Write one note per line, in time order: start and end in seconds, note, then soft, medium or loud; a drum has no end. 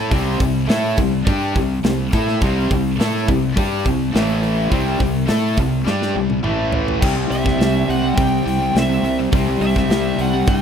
0.00 0.11 A3 medium
0.00 0.11 E4 medium
0.00 0.11 A4 medium
0.11 0.38 C2 medium
0.11 0.39 C3 loud
0.11 0.39 G3 loud
0.11 0.40 C4 loud
0.11 kick loud
0.11 open hi-hat medium
0.40 0.67 C2 medium
0.40 0.63 C3 medium
0.40 0.63 G3 medium
0.40 kick medium
0.40 open hi-hat medium
0.68 0.96 A2 medium
0.68 0.97 A3 medium
0.68 0.97 E4 loud
0.68 0.98 A4 loud
0.68 snare loud
0.68 open hi-hat medium
0.97 1.25 C2 medium
0.97 1.21 C3 medium
0.97 1.22 G3 medium
0.97 kick loud
0.97 open hi-hat medium
1.27 1.53 G2 medium
1.27 1.55 G3 loud
1.27 1.55 D4 loud
1.27 1.55 G4 loud
1.27 kick loud
1.27 open hi-hat medium
1.55 1.82 C2 medium
1.55 1.79 C3 medium
1.55 1.79 G3 medium
1.55 kick loud
1.55 open hi-hat medium
1.84 2.11 C2 medium
1.84 2.07 C3 medium
1.84 2.08 G3 medium
1.84 snare loud
1.84 open hi-hat medium
2.12 2.40 A2 loud
2.12 2.41 A3 medium
2.12 2.42 E4 medium
2.12 2.42 A4 loud
2.12 kick loud
2.12 open hi-hat medium
2.28 snare soft
2.41 2.68 C2 loud
2.41 2.70 C3 medium
2.41 2.70 G3 medium
2.41 2.71 C4 loud
2.41 kick loud
2.41 open hi-hat medium
2.71 2.98 C2 medium
2.71 2.94 C3 medium
2.71 2.94 G3 medium
2.71 kick loud
2.71 open hi-hat medium
2.99 3.26 A2 loud
2.99 3.28 A3 medium
2.99 3.28 E4 loud
2.99 3.28 A4 loud
2.99 snare loud
2.99 open hi-hat medium
3.28 3.55 C2 medium
3.28 3.51 C3 medium
3.28 3.51 G3 medium
3.28 kick loud
3.28 open hi-hat medium
3.56 3.83 G2 medium
3.56 3.84 G3 loud
3.56 3.85 D4 medium
3.56 3.85 G4 loud
3.56 kick loud
3.56 open hi-hat medium
3.84 4.12 C2 medium
3.84 4.08 C3 medium
3.84 4.08 G3 medium
3.84 kick medium
3.84 open hi-hat medium
4.12 4.68 A1 loud
4.12 4.70 A2 medium
4.12 4.70 E3 loud
4.12 4.70 A3 loud
4.12 snare loud
4.12 open hi-hat medium
4.43 open hi-hat medium
4.70 4.98 C2 loud
4.70 4.99 C3 medium
4.70 4.99 G3 loud
4.70 5.00 C4 medium
4.70 kick loud
4.70 open hi-hat medium
5.00 5.27 C2 medium
5.00 5.23 C3 medium
5.00 5.24 G3 medium
5.00 kick loud
5.00 open hi-hat medium
5.27 5.56 A2 medium
5.27 5.56 A3 medium
5.27 5.57 E4 loud
5.27 5.57 A4 loud
5.27 snare loud
5.27 open hi-hat medium
5.57 5.85 C2 medium
5.57 5.81 C3 medium
5.57 5.81 G3 medium
5.57 kick medium
5.57 open hi-hat medium
5.85 6.14 G2 medium
5.85 6.14 G3 medium
5.85 6.14 D4 medium
5.85 6.14 G4 loud
5.85 snare medium
6.02 snare medium
6.15 6.43 C2 medium
6.15 6.38 C3 medium
6.15 6.39 G3 medium
6.30 high tom medium
6.43 6.98 A1 loud
6.43 7.00 A2 medium
6.43 7.00 E3 loud
6.43 7.01 A3 loud
6.43 mid tom medium
6.72 floor tom loud
6.88 floor tom medium
7.00 7.25 C2 loud
7.00 7.14 C3 medium
7.00 7.14 G3 loud
7.00 7.14 C4 loud
7.00 kick loud
7.00 crash loud
7.16 7.29 C3 medium
7.16 7.29 G3 medium
7.30 7.54 C2 medium
7.30 7.44 C3 medium
7.30 7.44 G3 medium
7.30 7.90 E5 medium
7.30 open hi-hat medium
7.45 7.57 C3 medium
7.45 7.58 G3 medium
7.45 kick medium
7.45 snare soft
7.59 7.82 C2 medium
7.59 7.85 C3 medium
7.59 7.85 G3 medium
7.59 snare loud
7.59 open hi-hat medium
7.89 8.12 C2 medium
7.89 8.02 C3 medium
7.89 8.02 G3 medium
7.89 8.16 F#5 medium
7.89 open hi-hat medium
8.03 8.16 C3 medium
8.03 8.17 G3 medium
8.16 8.40 C2 medium
8.16 8.43 C3 medium
8.16 8.44 G3 medium
8.16 8.76 G5 loud
8.16 kick loud
8.16 open hi-hat medium
8.46 8.69 C2 medium
8.46 8.60 C3 medium
8.46 8.59 G3 medium
8.46 open hi-hat medium
8.60 8.74 C3 medium
8.60 8.75 G3 medium
8.75 8.98 C2 loud
8.75 8.89 C3 medium
8.75 8.89 G3 medium
8.75 9.17 E5 medium
8.75 snare loud
8.75 open hi-hat medium
8.90 9.04 C3 medium
8.90 9.03 G3 medium
9.03 9.26 C2 loud
9.03 9.18 C3 medium
9.03 9.18 G3 medium
9.03 open hi-hat medium
9.19 9.32 C3 medium
9.19 9.32 G3 medium
9.32 9.55 C2 loud
9.32 9.47 C3 medium
9.32 9.47 G3 medium
9.32 10.62 C4 loud
9.32 kick loud
9.32 open hi-hat medium
9.48 9.61 C3 medium
9.48 9.61 G3 medium
9.61 9.84 C2 medium
9.61 9.75 C3 medium
9.61 9.74 G3 medium
9.61 10.21 E5 medium
9.61 open hi-hat medium
9.76 9.89 C3 medium
9.76 9.89 G3 medium
9.76 kick medium
9.76 snare soft
9.89 10.12 C2 medium
9.89 10.16 C3 medium
9.89 10.16 G3 medium
9.89 snare loud
9.89 open hi-hat medium
10.19 10.41 C2 medium
10.19 10.32 C3 medium
10.19 10.33 G3 medium
10.19 10.49 F#5 medium
10.19 open hi-hat medium
10.34 10.47 C3 medium
10.34 10.48 G3 medium
10.47 10.62 G2 medium
10.47 10.62 C3 medium
10.47 10.62 G3 medium
10.47 10.62 G5 loud
10.47 kick loud
10.47 open hi-hat loud